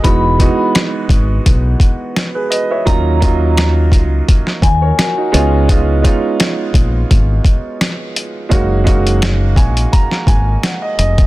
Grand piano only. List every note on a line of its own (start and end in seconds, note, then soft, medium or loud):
0.03 0.31 E3 medium
0.03 0.31 G#3 medium
0.03 0.32 B3 medium
0.03 0.32 D#4 medium
0.03 0.33 F#4 medium
0.38 1.46 E3 loud
0.38 1.46 G#3 medium
0.38 1.47 B3 medium
0.38 1.47 D#4 medium
0.38 1.47 F#4 loud
2.35 2.51 G#4 medium
2.35 2.49 B4 medium
2.50 2.69 B4 medium
2.50 2.69 D#5 medium
2.71 3.04 C#5 medium
2.71 3.04 E5 medium
2.85 3.13 F#3 medium
2.85 3.14 A#3 medium
2.85 3.14 C#4 medium
2.85 3.15 D#4 medium
2.85 3.15 F4 medium
3.20 4.28 F#3 loud
3.20 4.28 A#3 medium
3.20 4.29 C#4 medium
3.20 4.29 D#4 medium
3.20 4.30 F4 loud
4.82 4.96 A#4 medium
4.82 4.97 C#5 medium
4.98 5.15 F#4 medium
4.98 5.16 A#4 medium
5.17 5.33 D#4 medium
5.17 5.51 F#4 medium
5.32 5.62 G#3 loud
5.32 5.62 B3 medium
5.32 5.62 C#4 medium
5.32 5.63 D#4 medium
5.32 5.63 F4 loud
5.68 5.96 G#3 medium
5.68 5.96 B3 medium
5.68 5.97 C#4 medium
5.68 5.97 D#4 medium
5.68 5.97 F4 medium
6.02 7.10 G#3 medium
6.02 7.10 B3 medium
6.02 7.11 C#4 medium
6.02 7.11 D#4 medium
6.02 7.12 F4 loud
8.49 8.78 G#3 medium
8.49 8.78 A#3 medium
8.49 8.78 C#4 medium
8.49 8.79 D#4 medium
8.49 8.79 F#4 loud
8.84 9.92 G#3 medium
8.84 9.93 A#3 medium
8.84 9.93 C#4 medium
8.84 9.93 D#4 medium
8.84 9.94 F#4 loud
9.56 9.90 G#5 medium
9.93 10.25 A#5 medium
10.27 10.60 G#5 medium
10.63 10.81 F#5 medium
10.82 10.97 D#5 medium
10.99 11.27 D#5 medium